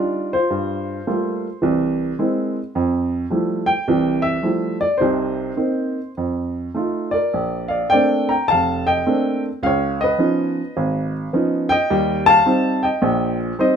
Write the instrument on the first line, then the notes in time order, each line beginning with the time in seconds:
upright piano
Already playing: G3 D4 D#4 F4 G4 D5
0.33 F4 C5
0.50 G2
1.07 G3 A3 A#3 F4
1.62 C2 E3
2.19 G#3 A#3 C4 E4
2.75 F2
3.30 F3 G3 A3 E4
3.66 G5
3.88 C2 E3
4.22 E5
4.43 F3 G3 A3 E4
4.81 D5
4.98 C2 C3 D#4 C5
5.57 A#3 C4 D#4
6.17 F2
6.74 A3 D#4 F4
7.11 A#4 D5
7.34 A#1
7.68 D5 F5
7.90 A3 A#3 C4 D4 D5 G5
8.29 G5 A#5
8.48 F1 F5 A5
8.87 D#5 G5
9.06 A3 A#3 C4 D4
9.63 C#2 C#5 F5
10.01 B4 D#5
10.19 F3 B3 C#4 D#4
10.77 G#1
11.33 F3 B3 C#4 D#4
11.69 D#5 G5
11.90 D#2 G3
12.26 F5 A5
12.46 G3 C4 D#4
12.83 D#5 G5
13.02 A#1 A#2
13.59 G3 C4 D#4 C5 D#5